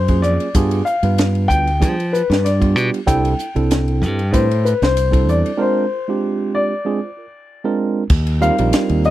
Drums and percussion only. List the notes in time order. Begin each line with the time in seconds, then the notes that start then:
0.08 kick, ride
0.23 hi-hat pedal
0.40 ride
0.55 kick, hi-hat pedal, ride
0.71 ride
0.86 hi-hat pedal
1.03 ride
1.18 snare, hi-hat pedal, ride
1.35 ride
1.50 kick, hi-hat pedal
1.67 ride
1.82 kick, hi-hat pedal, ride
2.00 ride
2.14 hi-hat pedal
2.31 snare, ride
2.46 snare, hi-hat pedal, ride
2.62 kick, ride
2.76 hi-hat pedal
2.94 ride
3.08 kick, hi-hat pedal, ride
3.25 ride
3.39 hi-hat pedal
3.56 ride
3.71 snare, hi-hat pedal, ride
3.88 ride
4.03 hi-hat pedal
4.19 ride
4.34 kick, hi-hat pedal, ride
4.51 ride
4.66 hi-hat pedal
4.82 snare, ride
4.97 hi-hat pedal, ride
5.13 kick, ride
5.29 hi-hat pedal
5.46 ride
8.10 kick, crash
8.27 ride
8.42 hi-hat pedal
8.58 ride
8.73 snare, hi-hat pedal, ride
8.89 ride
9.04 hi-hat pedal